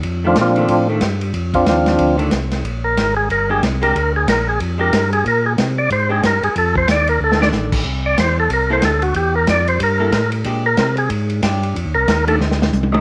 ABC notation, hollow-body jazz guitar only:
X:1
M:4/4
L:1/8
Q:"Swing" 1/4=184
K:Fmix
V:1 name="Hollow-body jazz guitar"
z [E,A,D] z [E,A,D] z [E,A,D] z2 | z4 z [E,A,D] z2 | z4 z [_A,DG] z [A,DG] | z4 z [_A,DG] z2 |
z4 z [_A,DG] z2 | z4 z [E,A,D]3 | z4 z [B,=EA] z2 | z4 z [B,=EA] z2 |
[_A,DG] z4 z [DG]2 | z3 [E,A,D] z3 [E,A,D] |]